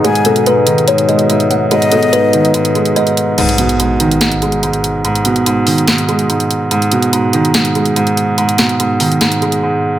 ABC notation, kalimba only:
X:1
M:4/4
L:1/8
Q:1/4=144
K:G#m
V:1 name="Kalimba"
G =A B2 c d e f | G =A B4 d2 | z8 | z8 |
z8 | z8 |]